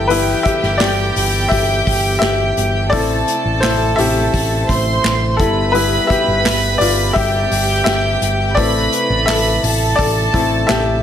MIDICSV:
0, 0, Header, 1, 6, 480
1, 0, Start_track
1, 0, Key_signature, 0, "minor"
1, 0, Tempo, 705882
1, 71, Time_signature, 4, 2, 24, 8
1, 7499, End_track
2, 0, Start_track
2, 0, Title_t, "Violin section"
2, 0, Program_c, 0, 48
2, 0, Note_on_c, 0, 67, 86
2, 0, Note_on_c, 0, 79, 94
2, 1963, Note_off_c, 0, 67, 0
2, 1963, Note_off_c, 0, 79, 0
2, 1992, Note_on_c, 0, 81, 90
2, 1993, Note_on_c, 0, 69, 83
2, 3167, Note_off_c, 0, 81, 0
2, 3168, Note_off_c, 0, 69, 0
2, 3187, Note_on_c, 0, 84, 95
2, 3190, Note_on_c, 0, 72, 79
2, 3659, Note_off_c, 0, 84, 0
2, 3661, Note_off_c, 0, 72, 0
2, 3667, Note_on_c, 0, 83, 90
2, 3671, Note_on_c, 0, 71, 90
2, 4845, Note_off_c, 0, 83, 0
2, 4846, Note_off_c, 0, 71, 0
2, 4871, Note_on_c, 0, 67, 84
2, 4873, Note_on_c, 0, 79, 97
2, 5811, Note_off_c, 0, 67, 0
2, 5812, Note_off_c, 0, 79, 0
2, 5828, Note_on_c, 0, 83, 93
2, 5829, Note_on_c, 0, 71, 80
2, 6535, Note_off_c, 0, 71, 0
2, 6535, Note_off_c, 0, 83, 0
2, 6546, Note_on_c, 0, 69, 86
2, 6546, Note_on_c, 0, 81, 102
2, 7488, Note_off_c, 0, 69, 0
2, 7488, Note_off_c, 0, 81, 0
2, 7499, End_track
3, 0, Start_track
3, 0, Title_t, "Upright piano"
3, 0, Program_c, 1, 0
3, 0, Control_c, 1, 64, 127
3, 0, Note_on_c, 1, 64, 57
3, 0, Note_on_c, 1, 69, 77
3, 51, Note_on_c, 1, 71, 89
3, 65, Note_on_c, 1, 55, 53
3, 68, Note_on_c, 1, 59, 47
3, 71, Note_off_c, 1, 69, 0
3, 74, Note_off_c, 1, 64, 0
3, 74, Note_on_c, 1, 64, 72
3, 294, Note_on_c, 1, 76, 91
3, 297, Note_off_c, 1, 64, 0
3, 309, Note_off_c, 1, 71, 0
3, 317, Note_on_c, 1, 67, 69
3, 525, Note_off_c, 1, 76, 0
3, 528, Note_on_c, 1, 74, 92
3, 537, Note_off_c, 1, 67, 0
3, 551, Note_on_c, 1, 67, 73
3, 1004, Note_off_c, 1, 67, 0
3, 1009, Note_on_c, 1, 76, 96
3, 1033, Note_on_c, 1, 67, 77
3, 1034, Note_off_c, 1, 74, 0
3, 1473, Note_off_c, 1, 76, 0
3, 1485, Note_off_c, 1, 67, 0
3, 1488, Note_on_c, 1, 76, 98
3, 1511, Note_on_c, 1, 67, 75
3, 1961, Note_off_c, 1, 55, 0
3, 1963, Note_off_c, 1, 59, 0
3, 1964, Note_off_c, 1, 67, 0
3, 1970, Note_on_c, 1, 74, 100
3, 1985, Note_on_c, 1, 57, 55
3, 1990, Note_on_c, 1, 60, 54
3, 1992, Note_on_c, 1, 64, 64
3, 1992, Note_on_c, 1, 69, 81
3, 1994, Note_off_c, 1, 76, 0
3, 1998, Control_c, 1, 64, 0
3, 2107, Control_c, 1, 64, 127
3, 2433, Note_off_c, 1, 74, 0
3, 2444, Note_off_c, 1, 69, 0
3, 2452, Note_on_c, 1, 72, 85
3, 2464, Note_off_c, 1, 64, 0
3, 2474, Note_on_c, 1, 64, 65
3, 2681, Note_off_c, 1, 57, 0
3, 2683, Note_off_c, 1, 60, 0
3, 2692, Note_on_c, 1, 76, 100
3, 2696, Note_off_c, 1, 64, 0
3, 2707, Note_on_c, 1, 57, 48
3, 2707, Note_on_c, 1, 60, 45
3, 2709, Note_off_c, 1, 72, 0
3, 2712, Note_on_c, 1, 64, 52
3, 2712, Note_on_c, 1, 67, 78
3, 2925, Note_off_c, 1, 57, 0
3, 2925, Note_off_c, 1, 60, 0
3, 2927, Note_off_c, 1, 64, 0
3, 3634, Note_off_c, 1, 76, 0
3, 3644, Note_off_c, 1, 67, 0
3, 3650, Note_on_c, 1, 69, 73
3, 3673, Note_on_c, 1, 64, 56
3, 3680, Control_c, 1, 64, 0
3, 3798, Control_c, 1, 64, 127
3, 3889, Note_on_c, 1, 71, 95
3, 3895, Note_off_c, 1, 64, 0
3, 3901, Note_on_c, 1, 55, 56
3, 3904, Note_on_c, 1, 59, 51
3, 3908, Note_off_c, 1, 69, 0
3, 3909, Note_on_c, 1, 64, 72
3, 4129, Note_on_c, 1, 76, 89
3, 4133, Note_off_c, 1, 64, 0
3, 4147, Note_off_c, 1, 71, 0
3, 4153, Note_on_c, 1, 67, 72
3, 4604, Note_off_c, 1, 67, 0
3, 4611, Note_on_c, 1, 74, 87
3, 4634, Note_off_c, 1, 76, 0
3, 4635, Note_on_c, 1, 65, 66
3, 4851, Note_on_c, 1, 76, 100
3, 4856, Note_off_c, 1, 65, 0
3, 4868, Note_off_c, 1, 74, 0
3, 4873, Note_on_c, 1, 67, 75
3, 5322, Note_off_c, 1, 76, 0
3, 5324, Note_off_c, 1, 67, 0
3, 5332, Note_on_c, 1, 76, 94
3, 5355, Note_on_c, 1, 67, 78
3, 5798, Note_off_c, 1, 55, 0
3, 5800, Note_off_c, 1, 59, 0
3, 5805, Note_off_c, 1, 67, 0
3, 5812, Note_on_c, 1, 74, 96
3, 5825, Note_on_c, 1, 57, 53
3, 5828, Note_on_c, 1, 60, 53
3, 5832, Note_on_c, 1, 64, 64
3, 5834, Note_on_c, 1, 69, 70
3, 5836, Note_off_c, 1, 76, 0
3, 5837, Control_c, 1, 64, 0
3, 5948, Control_c, 1, 64, 127
3, 6146, Note_off_c, 1, 57, 0
3, 6148, Note_off_c, 1, 60, 0
3, 6150, Note_off_c, 1, 64, 0
3, 6274, Note_off_c, 1, 74, 0
3, 6285, Note_off_c, 1, 69, 0
3, 6295, Note_on_c, 1, 76, 93
3, 6316, Note_on_c, 1, 69, 73
3, 6755, Note_off_c, 1, 76, 0
3, 6765, Note_off_c, 1, 69, 0
3, 6770, Note_on_c, 1, 74, 91
3, 6791, Note_on_c, 1, 69, 78
3, 7026, Note_on_c, 1, 57, 49
3, 7029, Note_on_c, 1, 60, 47
3, 7032, Note_on_c, 1, 64, 54
3, 7243, Note_off_c, 1, 69, 0
3, 7244, Note_off_c, 1, 57, 0
3, 7245, Note_off_c, 1, 60, 0
3, 7247, Note_off_c, 1, 64, 0
3, 7254, Note_on_c, 1, 76, 94
3, 7272, Note_on_c, 1, 67, 74
3, 7274, Note_off_c, 1, 74, 0
3, 7499, Note_off_c, 1, 67, 0
3, 7499, Note_off_c, 1, 76, 0
3, 7499, End_track
4, 0, Start_track
4, 0, Title_t, "Tonewheel organ"
4, 0, Program_c, 2, 16
4, 0, Note_on_c, 2, 52, 69
4, 0, Note_on_c, 2, 59, 58
4, 0, Note_on_c, 2, 67, 68
4, 1968, Note_off_c, 2, 52, 0
4, 1968, Note_off_c, 2, 59, 0
4, 1968, Note_off_c, 2, 67, 0
4, 1989, Note_on_c, 2, 48, 65
4, 1990, Note_on_c, 2, 64, 75
4, 1991, Note_on_c, 2, 57, 61
4, 3653, Note_off_c, 2, 48, 0
4, 3653, Note_off_c, 2, 64, 0
4, 3654, Note_off_c, 2, 57, 0
4, 3667, Note_on_c, 2, 55, 63
4, 3669, Note_on_c, 2, 67, 77
4, 3671, Note_on_c, 2, 59, 58
4, 5806, Note_off_c, 2, 55, 0
4, 5808, Note_off_c, 2, 59, 0
4, 5808, Note_off_c, 2, 67, 0
4, 5831, Note_on_c, 2, 64, 79
4, 5833, Note_on_c, 2, 48, 67
4, 5833, Note_on_c, 2, 57, 66
4, 7493, Note_off_c, 2, 64, 0
4, 7494, Note_off_c, 2, 48, 0
4, 7494, Note_off_c, 2, 57, 0
4, 7499, End_track
5, 0, Start_track
5, 0, Title_t, "Picked electric bass"
5, 0, Program_c, 3, 34
5, 0, Note_on_c, 3, 31, 99
5, 224, Note_off_c, 3, 31, 0
5, 430, Note_on_c, 3, 31, 95
5, 529, Note_off_c, 3, 31, 0
5, 549, Note_on_c, 3, 31, 99
5, 747, Note_off_c, 3, 31, 0
5, 790, Note_on_c, 3, 31, 100
5, 987, Note_off_c, 3, 31, 0
5, 1029, Note_on_c, 3, 31, 87
5, 1227, Note_off_c, 3, 31, 0
5, 1271, Note_on_c, 3, 31, 97
5, 1468, Note_off_c, 3, 31, 0
5, 1507, Note_on_c, 3, 31, 91
5, 1705, Note_off_c, 3, 31, 0
5, 1749, Note_on_c, 3, 31, 91
5, 1990, Note_off_c, 3, 31, 0
5, 1990, Note_on_c, 3, 33, 100
5, 2187, Note_off_c, 3, 33, 0
5, 2348, Note_on_c, 3, 33, 96
5, 2448, Note_off_c, 3, 33, 0
5, 2470, Note_on_c, 3, 33, 97
5, 2667, Note_off_c, 3, 33, 0
5, 2707, Note_on_c, 3, 33, 100
5, 2905, Note_off_c, 3, 33, 0
5, 2949, Note_on_c, 3, 33, 98
5, 3147, Note_off_c, 3, 33, 0
5, 3189, Note_on_c, 3, 33, 104
5, 3386, Note_off_c, 3, 33, 0
5, 3426, Note_on_c, 3, 33, 103
5, 3669, Note_on_c, 3, 31, 99
5, 3679, Note_off_c, 3, 33, 0
5, 4063, Note_off_c, 3, 31, 0
5, 4269, Note_on_c, 3, 31, 99
5, 4368, Note_off_c, 3, 31, 0
5, 4390, Note_on_c, 3, 31, 98
5, 4587, Note_off_c, 3, 31, 0
5, 4628, Note_on_c, 3, 31, 106
5, 4825, Note_off_c, 3, 31, 0
5, 4868, Note_on_c, 3, 31, 92
5, 5066, Note_off_c, 3, 31, 0
5, 5107, Note_on_c, 3, 31, 96
5, 5305, Note_off_c, 3, 31, 0
5, 5346, Note_on_c, 3, 31, 100
5, 5544, Note_off_c, 3, 31, 0
5, 5586, Note_on_c, 3, 31, 89
5, 5830, Note_off_c, 3, 31, 0
5, 5830, Note_on_c, 3, 33, 100
5, 6027, Note_off_c, 3, 33, 0
5, 6188, Note_on_c, 3, 33, 100
5, 6287, Note_off_c, 3, 33, 0
5, 6310, Note_on_c, 3, 33, 99
5, 6507, Note_off_c, 3, 33, 0
5, 6550, Note_on_c, 3, 33, 97
5, 6746, Note_off_c, 3, 33, 0
5, 6790, Note_on_c, 3, 33, 102
5, 6987, Note_off_c, 3, 33, 0
5, 7030, Note_on_c, 3, 33, 101
5, 7226, Note_off_c, 3, 33, 0
5, 7271, Note_on_c, 3, 33, 104
5, 7499, Note_off_c, 3, 33, 0
5, 7499, End_track
6, 0, Start_track
6, 0, Title_t, "Drums"
6, 69, Note_on_c, 9, 44, 61
6, 69, Note_on_c, 9, 46, 97
6, 137, Note_off_c, 9, 44, 0
6, 137, Note_off_c, 9, 46, 0
6, 306, Note_on_c, 9, 46, 79
6, 308, Note_on_c, 9, 44, 65
6, 311, Note_on_c, 9, 36, 100
6, 374, Note_off_c, 9, 46, 0
6, 376, Note_off_c, 9, 44, 0
6, 379, Note_off_c, 9, 36, 0
6, 428, Note_on_c, 9, 38, 36
6, 496, Note_off_c, 9, 38, 0
6, 546, Note_on_c, 9, 38, 109
6, 546, Note_on_c, 9, 44, 61
6, 546, Note_on_c, 9, 46, 70
6, 551, Note_on_c, 9, 39, 90
6, 614, Note_off_c, 9, 38, 0
6, 614, Note_off_c, 9, 44, 0
6, 614, Note_off_c, 9, 46, 0
6, 619, Note_off_c, 9, 39, 0
6, 789, Note_on_c, 9, 44, 63
6, 791, Note_on_c, 9, 46, 67
6, 857, Note_off_c, 9, 44, 0
6, 859, Note_off_c, 9, 46, 0
6, 1029, Note_on_c, 9, 44, 59
6, 1030, Note_on_c, 9, 36, 97
6, 1031, Note_on_c, 9, 46, 85
6, 1097, Note_off_c, 9, 44, 0
6, 1098, Note_off_c, 9, 36, 0
6, 1099, Note_off_c, 9, 46, 0
6, 1271, Note_on_c, 9, 44, 62
6, 1272, Note_on_c, 9, 36, 90
6, 1273, Note_on_c, 9, 46, 64
6, 1339, Note_off_c, 9, 44, 0
6, 1340, Note_off_c, 9, 36, 0
6, 1341, Note_off_c, 9, 46, 0
6, 1508, Note_on_c, 9, 44, 60
6, 1508, Note_on_c, 9, 46, 84
6, 1509, Note_on_c, 9, 38, 99
6, 1514, Note_on_c, 9, 39, 83
6, 1576, Note_off_c, 9, 44, 0
6, 1576, Note_off_c, 9, 46, 0
6, 1577, Note_off_c, 9, 38, 0
6, 1582, Note_off_c, 9, 39, 0
6, 1748, Note_on_c, 9, 46, 72
6, 1750, Note_on_c, 9, 44, 62
6, 1816, Note_off_c, 9, 46, 0
6, 1818, Note_off_c, 9, 44, 0
6, 1989, Note_on_c, 9, 44, 64
6, 1989, Note_on_c, 9, 46, 97
6, 1991, Note_on_c, 9, 36, 108
6, 2057, Note_off_c, 9, 44, 0
6, 2057, Note_off_c, 9, 46, 0
6, 2059, Note_off_c, 9, 36, 0
6, 2228, Note_on_c, 9, 46, 81
6, 2230, Note_on_c, 9, 44, 65
6, 2296, Note_off_c, 9, 46, 0
6, 2298, Note_off_c, 9, 44, 0
6, 2468, Note_on_c, 9, 38, 111
6, 2468, Note_on_c, 9, 44, 57
6, 2468, Note_on_c, 9, 46, 70
6, 2473, Note_on_c, 9, 39, 94
6, 2536, Note_off_c, 9, 38, 0
6, 2536, Note_off_c, 9, 44, 0
6, 2536, Note_off_c, 9, 46, 0
6, 2541, Note_off_c, 9, 39, 0
6, 2707, Note_on_c, 9, 44, 68
6, 2709, Note_on_c, 9, 46, 67
6, 2775, Note_off_c, 9, 44, 0
6, 2777, Note_off_c, 9, 46, 0
6, 2948, Note_on_c, 9, 44, 63
6, 2950, Note_on_c, 9, 36, 92
6, 2950, Note_on_c, 9, 46, 81
6, 3016, Note_off_c, 9, 44, 0
6, 3018, Note_off_c, 9, 36, 0
6, 3018, Note_off_c, 9, 46, 0
6, 3187, Note_on_c, 9, 44, 60
6, 3190, Note_on_c, 9, 36, 85
6, 3190, Note_on_c, 9, 46, 64
6, 3255, Note_off_c, 9, 44, 0
6, 3258, Note_off_c, 9, 36, 0
6, 3258, Note_off_c, 9, 46, 0
6, 3429, Note_on_c, 9, 44, 60
6, 3429, Note_on_c, 9, 46, 78
6, 3430, Note_on_c, 9, 38, 105
6, 3435, Note_on_c, 9, 39, 92
6, 3497, Note_off_c, 9, 44, 0
6, 3497, Note_off_c, 9, 46, 0
6, 3498, Note_off_c, 9, 38, 0
6, 3503, Note_off_c, 9, 39, 0
6, 3667, Note_on_c, 9, 46, 72
6, 3668, Note_on_c, 9, 44, 64
6, 3669, Note_on_c, 9, 36, 106
6, 3735, Note_off_c, 9, 46, 0
6, 3736, Note_off_c, 9, 44, 0
6, 3737, Note_off_c, 9, 36, 0
6, 3907, Note_on_c, 9, 44, 62
6, 3907, Note_on_c, 9, 46, 95
6, 3975, Note_off_c, 9, 44, 0
6, 3975, Note_off_c, 9, 46, 0
6, 4148, Note_on_c, 9, 46, 80
6, 4149, Note_on_c, 9, 36, 96
6, 4150, Note_on_c, 9, 44, 64
6, 4216, Note_off_c, 9, 46, 0
6, 4217, Note_off_c, 9, 36, 0
6, 4218, Note_off_c, 9, 44, 0
6, 4388, Note_on_c, 9, 38, 107
6, 4388, Note_on_c, 9, 44, 65
6, 4388, Note_on_c, 9, 46, 64
6, 4393, Note_on_c, 9, 39, 92
6, 4456, Note_off_c, 9, 38, 0
6, 4456, Note_off_c, 9, 44, 0
6, 4456, Note_off_c, 9, 46, 0
6, 4461, Note_off_c, 9, 39, 0
6, 4630, Note_on_c, 9, 44, 69
6, 4632, Note_on_c, 9, 46, 69
6, 4698, Note_off_c, 9, 44, 0
6, 4700, Note_off_c, 9, 46, 0
6, 4866, Note_on_c, 9, 44, 61
6, 4869, Note_on_c, 9, 36, 93
6, 4869, Note_on_c, 9, 46, 88
6, 4934, Note_off_c, 9, 44, 0
6, 4937, Note_off_c, 9, 36, 0
6, 4937, Note_off_c, 9, 46, 0
6, 5110, Note_on_c, 9, 44, 62
6, 5112, Note_on_c, 9, 46, 62
6, 5178, Note_off_c, 9, 44, 0
6, 5180, Note_off_c, 9, 46, 0
6, 5346, Note_on_c, 9, 46, 75
6, 5347, Note_on_c, 9, 44, 60
6, 5348, Note_on_c, 9, 38, 109
6, 5352, Note_on_c, 9, 39, 91
6, 5414, Note_off_c, 9, 46, 0
6, 5415, Note_off_c, 9, 44, 0
6, 5416, Note_off_c, 9, 38, 0
6, 5420, Note_off_c, 9, 39, 0
6, 5588, Note_on_c, 9, 46, 76
6, 5589, Note_on_c, 9, 44, 66
6, 5656, Note_off_c, 9, 46, 0
6, 5657, Note_off_c, 9, 44, 0
6, 5827, Note_on_c, 9, 44, 63
6, 5827, Note_on_c, 9, 46, 93
6, 5830, Note_on_c, 9, 36, 108
6, 5895, Note_off_c, 9, 44, 0
6, 5895, Note_off_c, 9, 46, 0
6, 5898, Note_off_c, 9, 36, 0
6, 6068, Note_on_c, 9, 46, 82
6, 6070, Note_on_c, 9, 44, 64
6, 6136, Note_off_c, 9, 46, 0
6, 6138, Note_off_c, 9, 44, 0
6, 6311, Note_on_c, 9, 38, 114
6, 6311, Note_on_c, 9, 44, 62
6, 6311, Note_on_c, 9, 46, 67
6, 6315, Note_on_c, 9, 39, 91
6, 6379, Note_off_c, 9, 38, 0
6, 6379, Note_off_c, 9, 44, 0
6, 6379, Note_off_c, 9, 46, 0
6, 6383, Note_off_c, 9, 39, 0
6, 6552, Note_on_c, 9, 44, 67
6, 6554, Note_on_c, 9, 46, 73
6, 6620, Note_off_c, 9, 44, 0
6, 6622, Note_off_c, 9, 46, 0
6, 6791, Note_on_c, 9, 36, 99
6, 6791, Note_on_c, 9, 44, 66
6, 6793, Note_on_c, 9, 46, 90
6, 6859, Note_off_c, 9, 36, 0
6, 6859, Note_off_c, 9, 44, 0
6, 6861, Note_off_c, 9, 46, 0
6, 7030, Note_on_c, 9, 36, 90
6, 7030, Note_on_c, 9, 44, 63
6, 7032, Note_on_c, 9, 46, 67
6, 7098, Note_off_c, 9, 36, 0
6, 7098, Note_off_c, 9, 44, 0
6, 7100, Note_off_c, 9, 46, 0
6, 7267, Note_on_c, 9, 44, 62
6, 7267, Note_on_c, 9, 46, 82
6, 7268, Note_on_c, 9, 38, 109
6, 7273, Note_on_c, 9, 39, 80
6, 7335, Note_off_c, 9, 44, 0
6, 7335, Note_off_c, 9, 46, 0
6, 7336, Note_off_c, 9, 38, 0
6, 7341, Note_off_c, 9, 39, 0
6, 7499, End_track
0, 0, End_of_file